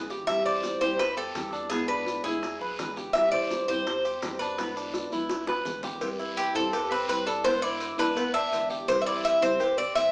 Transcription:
Already playing: analog synth bass A1, nylon-string guitar D3 G#3 B3 E4
0.10 cuban tres G4, high bongo, short guiro, maracas
0.27 nylon-string guitar E3 G3 C4 E4, cuban tres E5, high bongo, long guiro, maracas
0.45 cuban tres C5 D5
0.63 high bongo, short guiro, maracas
0.81 analog synth bass E2, nylon-string guitar G3 C4 E4, cuban tres G4 C5, short guiro, maracas
0.99 cuban tres B4 C5, muted nylon-string guitar stroke, high bongo, long guiro, maracas
1.17 cuban tres G4 A4
1.34 analog synth bass E2, nylon-string guitar E3 G3 C4 E4, high bongo, low bongo, short guiro, maracas
1.53 cuban tres D4, short guiro, maracas
1.70 nylon-string guitar B2 D3 G#3 B3 E4, cuban tres B3 G#4, high bongo, long guiro, maracas
1.88 cuban tres D4 B4, high bongo
2.06 high bongo, short guiro, maracas
2.24 analog synth bass E2, nylon-string guitar D3 G#3 B3 E4, cuban tres E4 G#4, short guiro, maracas
2.43 muted nylon-string guitar stroke, high bongo, long guiro, maracas
2.60 analog synth bass B1, cuban tres B4, high bongo
2.79 analog synth bass A1, nylon-string guitar D3 G#3 B3 E4, high bongo, low bongo, short guiro, maracas
2.96 cuban tres G4, high bongo, short guiro, maracas
3.13 nylon-string guitar E3 G3 C4 E4, cuban tres E5, high bongo, long guiro, maracas
3.32 cuban tres C5 D5
3.51 high bongo, short guiro, maracas
3.68 analog synth bass E2, nylon-string guitar G3 C4 E4, cuban tres G4 C5, short guiro, maracas
3.86 cuban tres C5, muted nylon-string guitar stroke, high bongo, long guiro, maracas
4.05 cuban tres G4, maracas
4.22 analog synth bass E2, nylon-string guitar E3 G3 C4 E4, high bongo, low bongo, short guiro, maracas
4.39 cuban tres D4 B4, short guiro, maracas
4.58 nylon-string guitar B2 D3 G#3 B3 E4, cuban tres B3, high bongo, long guiro, maracas
4.76 cuban tres D4, high bongo, maracas
4.94 high bongo, short guiro, maracas
5.12 analog synth bass B1, nylon-string guitar D3 G#3 B3 E4, cuban tres E4, short guiro, maracas
5.29 muted nylon-string guitar stroke, high bongo, long guiro, maracas
5.47 cuban tres B4, high bongo
5.65 analog synth bass A1, nylon-string guitar D3 G#3 B3 E4, low bongo, short guiro, maracas
5.83 cuban tres G4, low bongo, short guiro, maracas
6.01 nylon-string guitar E3 G3 C4 E4, cowbell, long guiro, maracas
6.19 cuban tres E4, maracas
6.37 cuban tres G4, cowbell, short guiro, maracas
6.55 analog synth bass E2, nylon-string guitar G3 C4 E4, cuban tres C4 A4, short guiro, maracas
6.72 cuban tres G4, muted nylon-string guitar stroke, cowbell, long guiro, maracas
6.91 cuban tres C4 B4, maracas
7.08 analog synth bass E2, nylon-string guitar E3 G3 C4 E4, cuban tres B4, cowbell, short guiro, maracas
7.26 cuban tres D4 A4, short guiro, maracas
7.44 nylon-string guitar B2 D3 G#3 B3 E4, cuban tres B3 C5, cowbell, long guiro, maracas
7.62 cuban tres E4 D5, maracas
7.80 cowbell, short guiro, maracas
7.98 analog synth bass B1, nylon-string guitar D3 G#3 B3 E4, cuban tres D4 B4, cowbell, short guiro, maracas
8.16 cuban tres B3, muted nylon-string guitar stroke, cowbell, long guiro, maracas
8.34 cuban tres D4 E5, cowbell, maracas
8.52 analog synth bass A1, nylon-string guitar D3 G#3 B3 E4, cowbell, short guiro, maracas
8.70 cuban tres G4, short guiro, maracas
8.87 nylon-string guitar E3 G3 C4 E4, cuban tres C5, cowbell, long guiro, maracas
9.02 cuban tres E5
9.06 cuban tres E4 D5, maracas
9.24 cuban tres E5, cowbell, short guiro, maracas
9.41 analog synth bass C2, nylon-string guitar G3 C4 E4, cuban tres C4 C5, short guiro
9.60 cuban tres G4, muted nylon-string guitar stroke, cowbell, long guiro, maracas
9.77 cuban tres C4 D5, maracas
9.95 analog synth bass E2, nylon-string guitar E3 G3 C4 E4, cuban tres E5, cowbell, short guiro, maracas

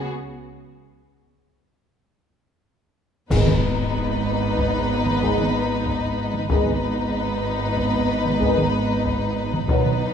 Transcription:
Already playing: double bass section C#2, cello section C#3
3.31 double bass section G#1, cello section G#2, timpani G#2, trombone section D#3 G#3, french horn section B3 G#4, viola section B3, violin section D#4 B4, concert bass drum, taiko, crash, impact
3.47 taiko mid
4.58 taiko
5.06 taiko mid
5.21 trombone section D#3 G#3, french horn section B3 G#4, taiko
5.38 taiko mid
5.86 taiko
6.34 taiko mid
6.48 double bass section G#1, cello section G#2, trombone section D#3 G#3, french horn section B3 G#4, viola section B3, violin section D#4 B4, taiko
6.66 taiko mid
7.77 taiko
8.25 taiko mid
8.40 trombone section D#3 G#3, french horn section B3 G#4, taiko
8.58 taiko mid
9.05 taiko
9.54 taiko mid
9.68 double bass section B1, cello section B2, trombone section D#3 F#3, french horn section B3 B4, viola section B3, violin section D#4 B4, taiko
9.85 taiko mid

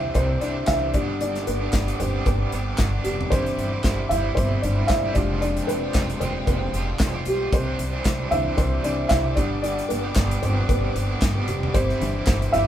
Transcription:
Already playing: upright bass C2, upright piano E3 C4 D4 E4 C5 E5, overdriven electric guitar G3 C4 D4 G4, string section C5 E5 D6
0.15 upright bass C2, upright piano C4 C5, kick, closed hi-hat
0.41 overdriven electric guitar C3 E3 G3 C4 D4 G4, upright piano D4 D5, closed hi-hat
0.67 upright bass C2, upright piano E3 C4 D4 E4 E5, kick, snare, clap, closed hi-hat
0.82 overdriven electric guitar G3 C4 D4 G4
0.94 upright bass G1, overdriven electric guitar G2 D3 G3 B3 D4 G4, upright piano G3 B3 D4 D5, string section B4 G5, kick, closed hi-hat
1.21 upright piano D4 D5, closed hi-hat
1.35 snare, closed hi-hat
1.47 upright bass G1, upright piano B3 B4, closed hi-hat
1.61 overdriven electric guitar G2 D3 G3 B3 D4 G4
1.73 upright bass G1, kick, snare, clap, closed hi-hat
1.88 closed hi-hat
1.99 upright bass G1, overdriven electric guitar G3 B3 D4 G4, upright piano G3 B3 C4 D4 C5, closed hi-hat, floor tom
2.26 upright bass G1, upright piano B3 B4, kick, closed hi-hat
2.52 upright bass G1, overdriven electric guitar G2 D3 G3 B3 D4 G4, closed hi-hat
2.78 upright bass G1, kick, snare, clap, closed hi-hat
2.94 overdriven electric guitar G3 B3 D4 G4
3.04 upright bass F1, upright piano G3 G4, closed hi-hat
3.21 floor tom
3.30 upright bass G1, upright piano E3 C4 D4 C5, overdriven electric guitar G3 C4 E4 G4, string section C5 E5, kick, closed hi-hat
3.46 closed hi-hat
3.58 upright bass G1, closed hi-hat
3.73 overdriven electric guitar G2 D3 G3 C4 E4 G4
3.84 upright bass G1, kick, snare, clap, closed hi-hat
4.09 upright bass G1, overdriven electric guitar G3 C4 E4 G4, upright piano E4 E5, closed hi-hat, floor tom
4.35 upright bass G1, upright piano C4 C5, kick, closed hi-hat
4.62 upright bass G1, overdriven electric guitar G2 D3 G3 C4 E4 G4, upright piano D4 D5, closed hi-hat
4.87 upright bass G1, upright piano E4 E5, kick, snare, clap, closed hi-hat
5.04 overdriven electric guitar G3 C4 E4 G4
5.13 upright bass F1, overdriven electric guitar F3 G#3 C4, upright piano G#3 D4 F4 G4 D5, string section F5 G5, kick, closed hi-hat
5.18 overdriven electric guitar F4 G4
5.41 upright piano D4 D5, closed hi-hat
5.57 closed hi-hat
5.67 upright bass F1, upright piano C4 B4, closed hi-hat
5.83 overdriven electric guitar F3 G#3 C4 F4 G4
5.94 upright bass F1, kick, snare, clap, closed hi-hat
6.10 closed hi-hat
6.20 upright bass F1, overdriven electric guitar G#3 C4 F4 G4, upright piano C4 C5, closed hi-hat, floor tom
6.47 upright bass F1, upright piano B3 B4, kick, closed hi-hat
6.73 upright bass F1, overdriven electric guitar F3 G#3 C4 F4 G4, closed hi-hat
6.99 upright bass F1, kick, snare, clap, closed hi-hat
7.14 overdriven electric guitar C4 F4 G4
7.25 upright bass B1, upright piano G3 G4, closed hi-hat
7.52 upright bass C2, overdriven electric guitar G3 C4 D4 G4, upright piano C4 C5, string section C5 E5 D6, kick, closed hi-hat
7.79 upright bass C2, closed hi-hat
7.93 overdriven electric guitar C3 E3 G3 C4 D4 G4
8.05 upright bass C2, kick, snare, clap, closed hi-hat
8.31 upright bass C2, upright piano E3 C4 D4 E4 E5, overdriven electric guitar G3 C4 D4 G4, closed hi-hat, floor tom
8.57 upright bass C2, upright piano C4 C5, kick, closed hi-hat
8.84 upright bass C2, overdriven electric guitar C3 E3 G3 C4 D4 G4, upright piano D4 D5, closed hi-hat
9.09 upright bass C2, upright piano E4 E5, kick, snare, clap, closed hi-hat
9.25 overdriven electric guitar G3 C4 D4 G4
9.35 upright bass G1, overdriven electric guitar G2 D3 G3 B3 D4 G4, upright piano G3 B3 D4 D5, string section B4 G5, kick, closed hi-hat
9.62 upright piano D4 D5, closed hi-hat
9.79 closed hi-hat
9.89 upright bass G1, upright piano B3 B4, closed hi-hat
10.03 overdriven electric guitar G2 D3 G3 B3 D4 G4
10.16 upright bass G1, kick, snare, clap, closed hi-hat
10.31 closed hi-hat
10.42 upright bass G1, overdriven electric guitar G3 B3 D4 G4, upright piano C4 C5, closed hi-hat, floor tom
10.69 upright bass G1, upright piano B3 B4, kick, closed hi-hat
10.95 upright bass G1, overdriven electric guitar G2 D3 G3 B3 D4 G4, closed hi-hat
11.22 upright bass G1, kick, snare, clap, closed hi-hat
11.36 overdriven electric guitar G3 B3 D4 G4
11.48 upright bass F1, upright piano G3 G4, closed hi-hat
11.63 floor tom
11.74 upright bass G1, overdriven electric guitar G3 C4 E4 G4, upright piano C4 C5, string section C5 E5, kick, closed hi-hat
11.89 snare
12.00 upright bass G1, upright piano E3 C4 D4, closed hi-hat
12.16 overdriven electric guitar G2 D3 G3 C4 E4 G4
12.27 upright bass G1, kick, snare, clap, closed hi-hat
12.42 closed hi-hat
12.52 upright bass G1, overdriven electric guitar G3 C4 E4 G4, upright piano E4 E5, closed hi-hat, floor tom

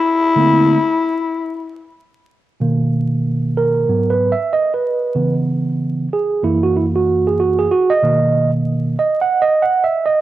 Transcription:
Already playing: tenor saxophone E4
0.36 tine electric piano D3 A3 A#3 C4 E4
2.60 tine electric piano B2 D#3 A#3
3.57 tine electric piano A#4
3.88 tine electric piano G#2 F#3 B3
4.10 tine electric piano B4
4.32 tine electric piano E5
4.53 tine electric piano D#5
4.74 tine electric piano B4
5.15 tine electric piano C#3 E3 B3
6.13 tine electric piano G#4
6.43 tine electric piano F#2 E3 A#3 E4
6.63 tine electric piano F#4
6.77 tine electric piano E4
6.96 tine electric piano F#4
7.27 tine electric piano G#4
7.40 tine electric piano F#4
7.58 tine electric piano G#4
7.71 tine electric piano F#4
7.90 tine electric piano D#5
8.02 tine electric piano B2 D#3 A#3
8.99 tine electric piano D#5
9.22 tine electric piano F#5
9.42 tine electric piano D#5
9.62 tine electric piano F#5
9.84 tine electric piano E5
10.06 tine electric piano D#5

